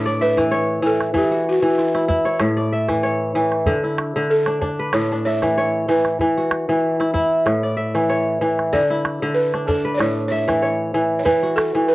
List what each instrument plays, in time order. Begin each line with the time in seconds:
Already playing: kora A2 D4 E4 B4, balafon C#5
0.06 kora D5
0.21 balafon B4, kora E5
0.37 kora E3, calabash thump, calabash click
0.51 kora C#5
0.82 kora E3, balafon A4
1.00 calabash click
1.14 kora E3, balafon G4, calabash thump, calabash click
1.31 kora F#4
1.49 balafon F#4
1.62 kora E3
1.70 balafon F#4
1.78 balafon E4, calabash click
1.94 kora E4, calabash click
2.08 kora E4, calabash thump
2.25 kora C#5
2.40 kora A2, calabash click
2.57 kora D5
2.72 kora E5
2.88 kora E3, calabash thump, calabash click
3.03 kora C#5
3.35 kora E3
3.52 calabash click
3.66 kora D3, calabash thump
3.83 kora E4
3.98 calabash click
4.16 kora D3
4.30 balafon A4
4.46 kora D4, calabash click
4.61 kora D4, calabash thump
4.79 kora B4
4.93 kora A2, balafon C#5, calabash click
5.12 kora D4
5.25 balafon C#5, kora E5
5.42 kora E3, calabash thump, calabash click
5.58 kora C#5
5.89 kora E3, balafon B4
6.05 calabash click
6.20 kora E3, calabash thump
6.38 kora F#4
6.51 calabash click
6.69 kora E3
7.00 kora E4, calabash click
7.14 kora E4, calabash thump
7.46 kora A2, calabash click
7.63 kora D5
7.77 kora E5
7.95 kora E3, calabash click
8.09 kora C#5
8.41 kora E3
8.59 calabash click
8.73 kora D3, balafon D5, calabash thump
8.90 kora E4
9.05 calabash click
9.22 kora D3
9.34 balafon B4
9.54 kora D4, calabash click
9.67 kora D4, balafon A4, calabash thump
9.85 kora B4
9.94 balafon C#5 D5
9.99 kora A2, calabash click
10.28 balafon C#5, kora E5
10.48 kora E3, calabash thump, calabash click
10.62 kora C#5
10.94 kora E3
11.19 balafon C#5
11.25 kora E3, balafon B4, calabash thump, calabash click
11.43 kora F#4
11.56 balafon A4, calabash click
11.75 kora E3
11.88 balafon B4